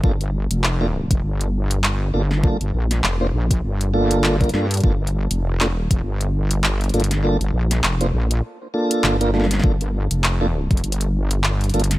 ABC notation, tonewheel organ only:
X:1
M:4/4
L:1/16
Q:"Swing 16ths" 1/4=100
K:Gm
V:1 name="Tonewheel organ"
[B,DFA] z4 [B,DFA] z8 [B,DFA] z | [B,DFA] z4 [B,DFc] z4 [B,DFA]3 [B,DFB] [B,DFA] z | [B,DFA] z4 [B,DFA] z8 [B,DFA] z | [B,DFA] z4 [B,DFc] z4 [B,DFA]3 [B,DFB] [B,DFA] z |
[B,DFA] z4 [B,DFA] z8 [B,DFA] z |]